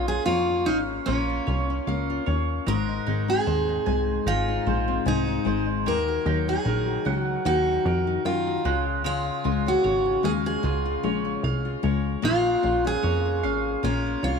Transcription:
Already playing: analog synth bass A#1, mandolin G#3 F4 C#5 F5, nylon-string guitar A#3 F4
0.08 nylon-string guitar C#4, steel-string acoustic guitar G#4
0.26 analog synth bass F2, nylon-string guitar A#3, steel-string acoustic guitar F4, mandolin C#5
0.50 nylon-string guitar F4
0.66 analog synth bass G#1, nylon-string guitar C#4, steel-string acoustic guitar D#4, mandolin F5
1.06 analog synth bass A#1, nylon-string guitar A#3, steel-string acoustic guitar C#4, mandolin F4
1.30 nylon-string guitar F4
1.47 analog synth bass C2, nylon-string guitar C#4, mandolin C#5
1.70 nylon-string guitar C#4
1.87 analog synth bass C#2, nylon-string guitar A#3, mandolin F5
2.10 nylon-string guitar F4
2.26 analog synth bass D#2, nylon-string guitar C#4, mandolin C#5
2.67 analog synth bass G#1, nylon-string guitar G#2, mandolin G#3, steel-string acoustic guitar A#4
2.89 nylon-string guitar D#4
3.07 analog synth bass G#1, nylon-string guitar G#3, mandolin D#4
3.28 nylon-string guitar C4, steel-string acoustic guitar G#4
3.47 analog synth bass D#2, nylon-string guitar G#2, mandolin C5
3.69 nylon-string guitar D#4
3.86 analog synth bass C2, nylon-string guitar G#3, mandolin G#5
4.26 analog synth bass G#1, nylon-string guitar G#2, mandolin D#4, steel-string acoustic guitar F4
4.48 nylon-string guitar D#4
4.66 analog synth bass A#1, nylon-string guitar G#3, mandolin C5
4.88 nylon-string guitar C4
5.06 analog synth bass C2, nylon-string guitar G#2, steel-string acoustic guitar D#4, mandolin G#5
5.27 nylon-string guitar D#4
5.45 analog synth bass G#1, nylon-string guitar G#3, mandolin C5
5.86 analog synth bass D#2, nylon-string guitar D#3, mandolin A#3, steel-string acoustic guitar A#4
6.08 nylon-string guitar F#4
6.26 analog synth bass D#2, nylon-string guitar F#3, mandolin D#4
6.48 nylon-string guitar D#4, steel-string acoustic guitar G#4
6.65 analog synth bass A#1, nylon-string guitar D#3, mandolin A#4
6.87 nylon-string guitar F#4
7.05 analog synth bass C#2, nylon-string guitar F#3, mandolin F#5
7.15 steel-string acoustic guitar F#4
7.45 analog synth bass D#2, nylon-string guitar D#3, mandolin D#4, steel-string acoustic guitar F#4
7.67 nylon-string guitar F#4
7.85 analog synth bass F2, mandolin A#4
8.07 nylon-string guitar D#4
8.25 analog synth bass F#2, nylon-string guitar D#3, steel-string acoustic guitar F4
8.47 nylon-string guitar F#4
8.65 analog synth bass C#2, nylon-string guitar C#3, mandolin G#3
9.04 nylon-string guitar C#3, mandolin G#3, steel-string acoustic guitar F4
9.44 analog synth bass C#2, nylon-string guitar G#3, mandolin F4
9.66 nylon-string guitar C#4, steel-string acoustic guitar F#4
9.84 analog synth bass G#1, nylon-string guitar C#3, mandolin C#5
10.05 nylon-string guitar F4
10.23 analog synth bass D#2, nylon-string guitar G#3, steel-string acoustic guitar G#4, mandolin F5
10.46 steel-string acoustic guitar G#4
10.63 analog synth bass C#2, nylon-string guitar C#3, mandolin F4
10.86 nylon-string guitar F4
11.03 analog synth bass A#1, nylon-string guitar G#3, mandolin C#5
11.25 nylon-string guitar C#4
11.43 analog synth bass C2, mandolin F5
11.65 nylon-string guitar F4
11.83 analog synth bass C#2, nylon-string guitar G#3, mandolin C#5
12.22 analog synth bass A#1, mandolin G#3, nylon-string guitar A#3, steel-string acoustic guitar F4
12.45 nylon-string guitar F4
12.62 analog synth bass A#1, nylon-string guitar C#4, mandolin F4
12.85 nylon-string guitar C#4, steel-string acoustic guitar G#4
13.03 analog synth bass F2, nylon-string guitar A#3, mandolin C#5
13.26 nylon-string guitar F4
13.43 analog synth bass G#1, nylon-string guitar C#4, mandolin F5
13.83 analog synth bass A#1, nylon-string guitar A#3, steel-string acoustic guitar C#4, mandolin F4
14.07 nylon-string guitar F4
14.23 analog synth bass C2, nylon-string guitar C#4, steel-string acoustic guitar F4, mandolin C#5

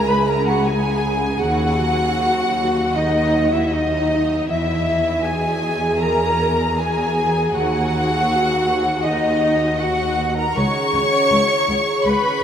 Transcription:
Already playing: cello section C#2, harp C#3 C#4 E4 G#4 C#5
0.09 viola section B4, violin section B5, flute B5
0.27 harp C#4, viola section A#4, violin section A#5, flute A#5
0.46 viola section F#4, violin section F#5, flute F#5
0.65 harp E4, viola section G#4, violin section G#5, flute G#5
1.05 harp G#4
1.41 cello section D#2, harp D#3, viola section F#4, violin section F#5, flute F#5
1.81 harp F#3
2.19 harp A#4
2.57 harp D#5
2.95 harp D#3, viola section D#4, violin section D#5, flute D#5
3.35 harp F#3
3.53 viola section E4, violin section E5, flute E5
3.71 viola section D#4, harp A#4, violin section D#5, flute D#5
4.11 harp D#5
4.48 cello section E2, harp E3, viola section E4, violin section E5, flute E5
4.87 harp E4
5.24 harp F#4, viola section G#4, violin section G#5, flute G#5
5.63 harp G#4
6.01 harp E3, viola section A#4, violin section A#5, flute A#5
6.39 harp E4
6.78 harp F#4, viola section G#4, violin section G#5, flute G#5
7.17 harp G#4
7.55 cello section D#2, harp D#3, viola section F#4, violin section F#5, flute F#5
7.93 harp D#4
8.30 harp F#4
8.68 harp B4
9.04 harp D#3, viola section D#4, violin section D#5, flute D#5
9.42 harp D#4
9.79 harp F#4, viola section F#4, flute F#5, violin section F#5
10.18 harp B4
10.36 viola section A#4, violin section A#5, flute A#5
10.55 cello section C#2, harp C#3, viola section C#5, violin section C#6, flute C#6
10.94 cello section C#2, harp C#4
11.32 cello section C#2, harp E4
11.69 cello section C#2, harp G#4
12.04 cello section C#2, harp C#3, viola section B4, violin section B5, flute B5

